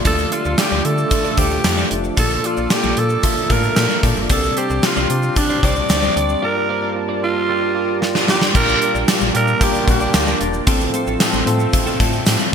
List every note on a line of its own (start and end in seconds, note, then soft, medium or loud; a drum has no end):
0.00 2.14 F4 medium
0.04 0.25 D2 loud
0.04 0.81 D3 medium
0.04 4.26 F3 medium
0.04 0.24 A3 medium
0.04 0.24 D4 medium
0.04 4.26 D4 medium
0.04 0.18 F4 medium
0.04 0.25 F4 medium
0.04 0.18 A4 medium
0.04 0.34 A4 loud
0.04 0.25 D5 medium
0.04 0.17 D5 medium
0.04 kick loud
0.04 closed hi-hat medium
0.04 shaker medium
0.18 shaker soft
0.31 0.51 A3 medium
0.31 0.51 D4 medium
0.31 0.42 F4 medium
0.31 0.51 F4 medium
0.31 0.60 F4 medium
0.31 0.52 G4 medium
0.31 0.42 A4 medium
0.31 0.43 D5 medium
0.31 closed hi-hat medium
0.31 shaker medium
0.45 0.55 D2 loud
0.45 0.56 F4 medium
0.45 0.56 A4 medium
0.45 0.55 D5 medium
0.45 shaker medium
0.58 0.78 A3 medium
0.58 0.78 D4 medium
0.58 0.78 F4 medium
0.58 0.87 G4 medium
0.58 0.78 D5 medium
0.58 muted clean electric guitar stroke soft
0.58 snare loud
0.58 closed hi-hat medium
0.58 shaker medium
0.71 0.82 D2 medium
0.71 0.83 F4 medium
0.71 0.84 A4 medium
0.71 0.85 D5 medium
0.71 shaker soft
0.85 1.05 D3 loud
0.85 1.04 A3 medium
0.85 1.05 D4 medium
0.85 1.05 F4 medium
0.85 1.40 A4 medium
0.85 1.05 D5 medium
0.85 muted clean electric guitar stroke soft
0.85 closed hi-hat medium
0.85 shaker soft
0.98 muted clean electric guitar stroke soft
0.98 shaker medium
1.11 1.30 A3 medium
1.11 1.31 D4 medium
1.11 1.31 F4 medium
1.11 1.31 D5 medium
1.11 muted clean electric guitar stroke soft
1.11 kick loud
1.11 closed hi-hat medium
1.11 shaker medium
1.25 1.36 F4 soft
1.25 1.35 A4 soft
1.25 1.35 D5 medium
1.25 shaker soft
1.37 1.58 D2 medium
1.37 1.57 A3 medium
1.37 1.57 D4 medium
1.37 1.51 F4 medium
1.37 1.57 F4 medium
1.37 1.92 G4 medium
1.37 1.51 A4 medium
1.37 1.58 C5 medium
1.37 1.50 D5 medium
1.37 kick medium
1.37 closed hi-hat medium
1.51 muted clean electric guitar stroke soft
1.51 shaker soft
1.64 1.84 F2 medium
1.64 1.84 A3 medium
1.64 1.84 D4 medium
1.64 1.84 F4 medium
1.64 1.84 D5 medium
1.64 muted clean electric guitar stroke soft
1.64 snare loud
1.64 closed hi-hat loud
1.64 shaker medium
1.77 1.90 F4 medium
1.77 1.90 A4 medium
1.77 1.91 D5 medium
1.77 shaker medium
1.90 2.11 F1 medium
1.90 2.10 A3 medium
1.90 2.10 D4 medium
1.90 2.10 F4 medium
1.90 2.11 A4 medium
1.90 muted clean electric guitar stroke soft
1.90 closed hi-hat medium
1.90 shaker soft
2.04 muted clean electric guitar stroke soft
2.04 shaker soft
2.16 2.38 A#1 loud
2.16 2.93 A#2 medium
2.16 2.36 A#3 medium
2.16 4.28 A#3 medium
2.16 2.36 F4 medium
2.16 2.30 F4 medium
2.16 2.37 A4 medium
2.16 2.30 A4 medium
2.16 2.48 A4 medium
2.16 2.37 D5 medium
2.16 2.29 D5 medium
2.16 kick loud
2.16 closed hi-hat medium
2.16 shaker medium
2.30 muted clean electric guitar stroke soft
2.30 shaker soft
2.43 2.63 A#3 medium
2.43 2.63 F4 medium
2.43 2.54 F4 medium
2.43 2.74 F4 medium
2.43 2.63 A4 medium
2.43 2.54 A4 medium
2.43 2.64 D5 medium
2.43 2.55 D5 medium
2.43 closed hi-hat medium
2.43 shaker medium
2.56 2.68 A#1 medium
2.56 2.68 F4 medium
2.56 2.68 A4 medium
2.56 2.67 D5 medium
2.56 shaker medium
2.70 2.90 A#3 medium
2.70 2.90 F4 medium
2.70 3.01 G4 medium
2.70 2.90 A4 medium
2.70 2.90 D5 medium
2.70 muted clean electric guitar stroke soft
2.70 snare loud
2.70 closed hi-hat medium
2.70 shaker medium
2.83 2.94 A#1 medium
2.83 2.96 F4 medium
2.83 2.96 A4 medium
2.83 2.97 D5 medium
2.83 shaker medium
2.97 3.17 A#2 loud
2.97 3.16 A#3 medium
2.97 3.17 F4 medium
2.97 3.17 A4 medium
2.97 3.53 A4 loud
2.97 3.17 D5 medium
2.97 closed hi-hat medium
2.97 shaker soft
3.09 muted clean electric guitar stroke soft
3.09 shaker soft
3.23 3.43 A#3 medium
3.23 3.43 F4 medium
3.23 3.43 A4 medium
3.23 3.43 E5 loud
3.23 muted clean electric guitar stroke soft
3.23 kick loud
3.23 closed hi-hat medium
3.23 shaker medium
3.36 muted clean electric guitar stroke soft
3.36 shaker soft
3.50 3.70 A2 medium
3.50 3.70 A#3 medium
3.50 3.63 F4 medium
3.50 3.70 F4 medium
3.50 3.63 A4 medium
3.50 3.70 A4 medium
3.50 4.04 A#4 loud
3.50 3.70 D5 medium
3.50 3.62 D5 medium
3.50 kick medium
3.50 closed hi-hat medium
3.63 muted clean electric guitar stroke soft
3.63 shaker soft
3.76 3.87 A#2 loud
3.76 3.96 A#3 medium
3.76 3.96 F4 medium
3.76 3.96 A4 medium
3.76 3.96 F5 medium
3.76 muted clean electric guitar stroke soft
3.76 snare loud
3.76 closed hi-hat loud
3.76 shaker medium
3.90 4.01 F4 medium
3.90 4.01 A4 medium
3.90 4.00 D5 medium
3.90 shaker soft
4.03 4.14 A#2 medium
4.03 4.23 A#3 medium
4.03 4.16 F4 medium
4.03 4.23 F4 medium
4.03 4.17 A4 medium
4.03 4.23 A4 medium
4.03 4.23 D5 medium
4.03 4.16 D5 loud
4.03 kick medium
4.03 closed hi-hat medium
4.03 shaker soft
4.16 4.27 G1 medium
4.16 muted clean electric guitar stroke soft
4.16 shaker soft
4.30 4.50 C2 loud
4.30 5.06 C3 medium
4.30 8.51 G3 medium
4.30 4.49 C4 medium
4.30 6.40 C4 medium
4.30 4.49 D4 medium
4.30 8.51 D4 medium
4.30 4.43 G4 medium
4.30 4.50 G4 medium
4.30 4.60 A4 medium
4.30 4.43 C5 medium
4.30 4.50 D5 loud
4.30 4.42 D5 medium
4.30 kick loud
4.30 closed hi-hat medium
4.30 shaker medium
4.43 muted clean electric guitar stroke soft
4.43 shaker soft
4.56 4.76 C4 medium
4.56 4.76 D4 medium
4.56 4.67 G4 medium
4.56 4.76 G4 medium
4.56 4.87 G4 medium
4.56 4.67 C5 medium
4.56 4.77 D5 medium
4.56 4.68 D5 medium
4.56 closed hi-hat medium
4.56 shaker medium
4.70 4.80 C2 loud
4.70 4.81 G4 medium
4.70 4.80 C5 medium
4.70 4.80 D5 medium
4.70 shaker medium
4.83 5.03 C4 medium
4.83 5.03 D4 medium
4.83 5.40 F4 medium
4.83 5.03 G4 medium
4.83 5.03 D5 medium
4.83 muted clean electric guitar stroke soft
4.83 snare loud
4.83 closed hi-hat medium
4.83 shaker medium
4.96 5.07 C2 medium
4.96 5.09 G4 medium
4.96 5.09 C5 medium
4.96 5.09 D5 medium
4.96 shaker soft
5.09 5.30 C3 medium
5.09 5.29 C4 medium
5.09 5.29 D4 medium
5.09 5.29 G4 medium
5.09 5.30 D5 medium
5.09 muted clean electric guitar stroke soft
5.09 closed hi-hat medium
5.09 shaker soft
5.22 muted clean electric guitar stroke soft
5.22 shaker soft
5.36 5.56 C4 medium
5.36 5.56 D4 medium
5.36 5.66 D4 medium
5.36 5.56 G4 medium
5.36 5.56 D5 loud
5.36 muted clean electric guitar stroke soft
5.36 kick loud
5.36 closed hi-hat medium
5.36 shaker medium
5.49 5.60 G4 soft
5.49 5.60 C5 medium
5.49 5.60 D5 medium
5.49 shaker soft
5.63 5.83 C2 medium
5.63 5.82 C4 medium
5.63 5.82 D4 medium
5.63 5.76 G4 medium
5.63 5.82 G4 medium
5.63 5.76 C5 medium
5.63 5.83 D5 medium
5.63 6.43 D5 loud
5.63 5.75 D5 loud
5.63 kick medium
5.63 closed hi-hat medium
5.76 muted clean electric guitar stroke medium
5.76 shaker soft
5.89 6.10 D2 medium
5.89 6.09 C4 medium
5.89 6.09 D4 medium
5.89 6.09 G4 medium
5.89 6.09 D5 medium
5.89 muted clean electric guitar stroke soft
5.89 snare loud
5.89 closed hi-hat loud
5.89 shaker medium
6.03 6.15 G4 medium
6.03 6.15 C5 medium
6.03 6.16 D5 medium
6.03 shaker soft
6.16 6.36 D2 medium
6.16 6.35 C4 medium
6.16 6.35 D4 medium
6.16 6.36 G4 medium
6.16 6.36 D5 medium
6.16 muted clean electric guitar stroke soft
6.16 closed hi-hat medium
6.16 shaker soft
6.29 muted clean electric guitar stroke soft
6.29 shaker soft
6.42 7.18 G2 medium
6.42 6.62 A#3 medium
6.42 8.52 F4 medium
6.42 6.62 F4 medium
6.42 6.55 F4 medium
6.42 6.62 G4 medium
6.42 8.52 A#4 medium
6.42 6.56 A#4 medium
6.42 6.93 A#4 medium
6.42 6.62 D5 medium
6.42 6.55 D5 medium
6.42 8.52 A5 medium
6.56 muted clean electric guitar stroke soft
6.69 6.88 A#3 medium
6.69 6.88 F4 medium
6.69 6.79 F4 medium
6.69 6.89 G4 medium
6.69 6.80 A#4 medium
6.69 6.89 C5 medium
6.69 6.80 D5 medium
6.82 6.93 F4 medium
6.82 6.93 A#4 medium
6.82 6.92 D5 medium
6.95 7.15 A#3 medium
6.95 7.15 F4 medium
6.95 7.15 G4 medium
6.95 7.15 D5 medium
6.95 muted clean electric guitar stroke soft
7.09 7.21 F4 medium
7.09 7.21 A#4 medium
7.09 7.22 D5 medium
7.22 7.41 A#3 medium
7.22 7.42 F4 medium
7.22 7.99 F4 loud
7.22 7.42 G4 medium
7.22 7.42 D5 medium
7.22 muted clean electric guitar stroke soft
7.35 muted clean electric guitar stroke soft
7.48 7.68 A#3 medium
7.48 7.68 F4 medium
7.48 7.68 G4 medium
7.48 7.69 D5 loud
7.48 muted clean electric guitar stroke soft
7.62 muted clean electric guitar stroke soft
7.75 7.94 A#3 medium
7.75 7.94 F4 medium
7.75 7.95 G4 medium
7.75 7.95 D5 medium
7.89 muted clean electric guitar stroke soft
8.01 8.21 A#3 medium
8.01 8.21 F4 medium
8.01 8.21 G4 medium
8.01 8.21 D5 medium
8.01 muted clean electric guitar stroke soft
8.01 snare medium
8.15 8.26 F4 soft
8.15 8.26 A#4 medium
8.15 8.25 D5 medium
8.15 snare medium
8.27 8.47 A#3 medium
8.27 8.47 F4 medium
8.27 8.41 F4 medium
8.27 8.48 G4 medium
8.27 8.54 G4 medium
8.27 8.42 A#4 medium
8.27 8.48 D5 medium
8.27 8.41 D5 loud
8.27 snare medium
8.41 muted clean electric guitar stroke soft
8.41 snare medium
8.54 8.75 A#1 loud
8.54 9.30 A#2 medium
8.54 10.65 G3 medium
8.54 8.74 A#3 loud
8.54 10.66 A#3 medium
8.54 8.74 D4 medium
8.54 10.65 D4 medium
8.54 8.74 F4 medium
8.54 8.74 G4 medium
8.54 8.68 G4 medium
8.54 9.05 A#4 loud
8.54 8.68 A#4 loud
8.54 8.74 D5 loud
8.54 8.67 D5 loud
8.54 kick loud
8.54 crash loud
8.54 shaker medium
8.69 muted clean electric guitar stroke soft
8.69 shaker medium
8.81 9.00 A#3 medium
8.81 9.01 D4 medium
8.81 9.01 F4 medium
8.81 8.92 G4 medium
8.81 9.01 G4 medium
8.81 8.92 A#4 medium
8.81 9.01 D5 medium
8.81 8.93 D5 medium
8.81 closed hi-hat medium
8.81 shaker medium
8.95 9.05 A#1 loud
8.95 9.06 G4 medium
8.95 9.05 A#4 medium
8.95 9.05 D5 medium
8.95 shaker medium
9.07 9.27 A#3 medium
9.07 9.27 D4 medium
9.07 9.27 F4 medium
9.07 9.27 G4 medium
9.07 9.27 D5 medium
9.07 snare loud
9.07 closed hi-hat medium
9.07 tambourine medium
9.07 shaker medium
9.21 9.31 A#1 loud
9.21 muted clean electric guitar stroke soft
9.21 shaker medium
9.33 9.55 A#2 loud
9.33 9.53 A#3 medium
9.33 9.53 D4 medium
9.33 9.53 F4 medium
9.33 9.54 G4 medium
9.33 9.47 G4 medium
9.33 9.48 A#4 medium
9.33 9.65 A#4 loud
9.33 9.54 D5 medium
9.33 9.47 D5 medium
9.33 closed hi-hat medium
9.33 shaker soft
9.47 muted clean electric guitar stroke soft
9.47 shaker medium
9.60 9.80 A#3 medium
9.60 9.80 D4 medium
9.60 9.80 F4 medium
9.60 9.80 G4 medium
9.60 9.74 G4 medium
9.60 9.89 G4 loud
9.60 9.80 A#4 loud
9.60 9.74 A#4 medium
9.60 9.73 D5 medium
9.60 kick loud
9.60 closed hi-hat medium
9.60 shaker medium
9.74 muted clean electric guitar stroke soft
9.74 shaker medium
9.86 10.08 A#1 medium
9.86 10.06 A#3 medium
9.86 10.06 D4 medium
9.86 10.07 F4 medium
9.86 10.07 G4 medium
9.86 10.38 G4 medium
9.86 10.07 D5 medium
9.86 muted clean electric guitar stroke soft
9.86 kick loud
9.86 closed hi-hat medium
9.86 shaker medium
10.01 10.12 G4 soft
10.01 10.11 A#4 medium
10.01 10.11 D5 medium
10.01 shaker soft
10.13 10.34 D2 medium
10.13 10.33 A#3 medium
10.13 10.33 D4 medium
10.13 10.33 F4 medium
10.13 10.33 G4 medium
10.13 10.34 D5 medium
10.13 snare loud
10.13 closed hi-hat loud
10.13 tambourine medium
10.13 shaker medium
10.27 10.40 G4 medium
10.27 10.41 A#4 medium
10.27 10.40 D5 medium
10.27 shaker medium
10.40 10.61 E1 loud
10.40 10.60 A#3 medium
10.40 10.60 D4 medium
10.40 10.60 F4 medium
10.40 10.60 G4 medium
10.40 10.51 G4 medium
10.40 10.51 A#4 medium
10.40 10.60 D5 medium
10.40 10.52 D5 medium
10.40 closed hi-hat medium
10.40 shaker medium
10.54 muted clean electric guitar stroke soft
10.54 shaker soft
10.67 10.87 A1 loud
10.67 11.43 A2 medium
10.67 12.51 F3 medium
10.67 12.51 A3 medium
10.67 10.86 C4 loud
10.67 10.80 C4 loud
10.67 12.51 C4 medium
10.67 10.87 F4 loud
10.67 10.81 F4 loud
10.67 10.87 A4 loud
10.67 10.81 A4 loud
10.67 kick loud
10.67 closed hi-hat loud
10.67 shaker medium
10.81 shaker medium
10.93 11.13 C4 medium
10.93 11.04 C4 medium
10.93 11.13 F4 medium
10.93 11.04 F4 medium
10.93 11.05 A4 medium
10.93 11.13 C5 loud
10.93 closed hi-hat medium
10.93 shaker medium
11.07 11.17 A1 medium
11.07 11.18 C4 medium
11.07 11.18 F4 medium
11.07 11.17 A4 medium
11.07 shaker medium
11.20 11.39 C4 medium
11.20 11.40 F4 medium
11.20 11.40 A4 loud
11.20 muted clean electric guitar stroke soft
11.20 snare loud
11.20 closed hi-hat loud
11.20 tambourine medium
11.20 shaker medium
11.33 11.44 A1 loud
11.33 muted clean electric guitar stroke soft
11.33 shaker medium
11.46 11.67 A2 loud
11.46 11.66 C4 medium
11.46 11.59 C4 medium
11.46 11.66 F4 medium
11.46 11.59 F4 medium
11.46 11.67 A4 loud
11.46 11.58 A4 medium
11.46 closed hi-hat medium
11.46 shaker soft
11.59 11.71 C4 medium
11.59 11.70 F4 medium
11.59 11.70 A4 medium
11.59 shaker medium
11.73 11.86 C5 medium
11.73 11.86 F5 medium
11.73 muted clean electric guitar stroke soft
11.73 kick loud
11.73 closed hi-hat medium
11.73 shaker medium
11.86 11.98 C4 medium
11.86 11.99 F4 medium
11.86 11.99 A4 medium
11.86 12.00 D5 medium
11.86 11.99 G5 medium
11.86 shaker medium
12.00 12.20 A2 loud
12.00 12.10 C4 medium
12.00 12.10 F4 medium
12.00 12.11 A4 medium
12.00 12.13 E5 medium
12.00 12.12 A5 medium
12.00 kick loud
12.00 closed hi-hat medium
12.00 shaker medium
12.13 12.39 D5 medium
12.13 12.38 G5 medium
12.13 muted clean electric guitar stroke soft
12.13 shaker soft
12.26 12.37 A2 medium
12.26 muted clean electric guitar stroke soft
12.26 snare loud
12.26 closed hi-hat loud
12.26 tambourine medium
12.26 shaker medium
12.40 12.55 C5 medium
12.40 12.55 F5 medium
12.40 muted clean electric guitar stroke soft
12.40 shaker medium